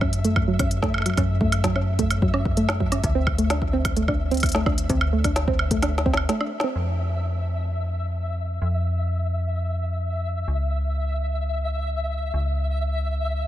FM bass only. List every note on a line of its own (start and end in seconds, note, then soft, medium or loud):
0.00 1.15 F#2 medium
1.18 3.01 F#2 medium
3.04 4.87 D2 medium
4.90 6.29 D2 medium
6.76 8.59 F2 medium
8.62 10.45 F2 medium
10.48 12.31 C#2 medium
12.34 13.47 C#2 medium